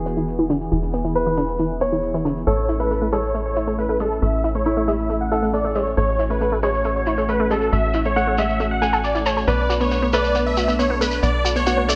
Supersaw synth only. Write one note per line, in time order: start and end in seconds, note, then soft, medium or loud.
2.47 2.74 C#5 loud
2.80 3.07 B4 medium
3.13 3.40 C#5 medium
3.46 3.72 C#5 medium
3.78 3.96 B4 medium
4.00 4.18 A4 medium
4.22 4.49 E5 medium
4.55 4.82 C#5 medium
4.88 5.15 E5 medium
5.21 5.48 F#5 medium
5.54 5.71 D5 medium
5.75 5.93 C#5 medium
5.97 6.24 C#5 loud
6.30 6.57 B4 medium
6.63 6.90 C#5 medium
6.96 7.23 C#5 medium
7.29 7.47 B4 medium
7.51 7.69 A4 medium
7.73 7.99 E5 loud
8.05 8.32 C#5 medium
8.38 8.65 E5 medium
8.71 8.98 F#5 medium
9.04 9.22 D5 medium
9.26 9.44 C#5 medium
9.48 9.75 D5 loud
9.81 10.08 C#5 medium
10.14 10.40 D5 medium
10.46 10.73 E5 medium
10.79 10.97 C#5 medium
11.01 11.19 B4 medium
11.23 11.50 D5 loud
11.56 11.83 C#5 medium
11.88 11.96 D5 medium